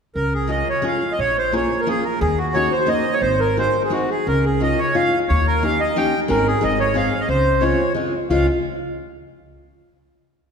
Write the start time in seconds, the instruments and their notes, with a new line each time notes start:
0.15 upright bass C#2, accordion A#4
0.34 accordion G#4
0.47 steel-string acoustic guitar G#3 C#4 F4 G#4, accordion D#5
0.69 accordion C#5
0.82 steel-string acoustic guitar G#3 C#4 F4 G#4
0.87 accordion F5
1.12 accordion D#5
1.19 upright bass A#1, accordion C#5
1.38 accordion C5
1.52 steel-string acoustic guitar A#3 C#4 F4 G#4, accordion C#5
1.80 accordion A#4
1.87 steel-string acoustic guitar A#3 C#4 F4 G#4, accordion G#4
2.04 accordion A#4
2.21 upright bass D#2, accordion G#4
2.37 accordion F#4
2.54 steel-string acoustic guitar A#3 C#4 D#4 F#4, accordion C#5
2.72 accordion C5
2.86 steel-string acoustic guitar A#3 C#4 D#4 F#4, accordion D#5
3.13 accordion C#5
3.22 upright bass G#1, accordion C5
3.40 accordion A#4
3.57 steel-string acoustic guitar G#3 C4 D#4 F#4, accordion C5
3.81 accordion G#4 A#4
3.90 steel-string acoustic guitar G#3 C4 D#4 F#4, accordion F#4
4.10 accordion G#4
4.27 upright bass C#2, accordion A#4
4.45 accordion G#4
4.60 steel-string acoustic guitar G#3 C#4 D#4 F4, accordion D#5
4.78 accordion C#5
4.95 steel-string acoustic guitar G#3 C#4 D#4 F4, accordion F5
5.28 upright bass D#2, accordion C#5
5.47 accordion A#4
5.62 steel-string acoustic guitar A#3 C#4 D#4 G4, accordion F5
5.80 accordion D#5
5.96 steel-string acoustic guitar A#3 C#4 D#4 G4, accordion G5
6.28 upright bass G#1, steel-string acoustic guitar G#3 C#4 D#4 G#4, accordion A#4
6.47 accordion G#4
6.61 upright bass G#1, steel-string acoustic guitar G#3 C4 D#4 G#4, accordion D#5
6.80 accordion C#5
6.94 steel-string acoustic guitar G#3 C4 D#4 G#4, accordion F5
7.20 accordion D#5
7.29 upright bass C#2, accordion C5
7.60 steel-string acoustic guitar G#3 C4 C#4 F4, accordion C#5
7.94 steel-string acoustic guitar G#3 C4 C#4 F4
8.30 upright bass C#2, steel-string acoustic guitar G#3 C4 C#4 F4, accordion F5